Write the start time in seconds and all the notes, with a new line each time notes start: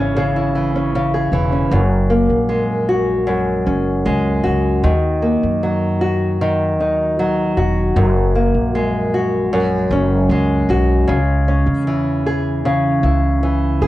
Already playing: G#1 C#3 E3 C#4 E4 G#4
0.16 C#3 G#4
0.36 E4
0.55 E3
0.76 C#4
0.95 C#3
1.14 G#4
1.32 E1 E3
1.52 C#4
1.71 F#1 F#2
2.10 A#3
2.30 A#1
2.49 G#3
2.89 F#4
3.27 F#2
3.66 F#1 C#4
4.06 C#2 G#3
4.44 C#2 F#4
4.84 D#2 D#3
5.22 A#3
5.43 F#2
5.63 F#3
6.01 F#4
6.41 D#3
6.79 D#2 D#4
7.19 F#3
7.57 E1 F#4
7.96 F#1 F#2
8.35 A#3
8.54 A#1
8.75 G#3
9.14 F#4
9.53 F#2
9.91 F#1 C#4
10.29 C#2 G#3
10.69 B1 F#4
11.08 C#2 C#3
11.48 C#4
11.66 E2
11.87 E3
12.26 G#4
12.65 C#3
13.03 C#2 E4
13.43 E3
13.81 E1 G#4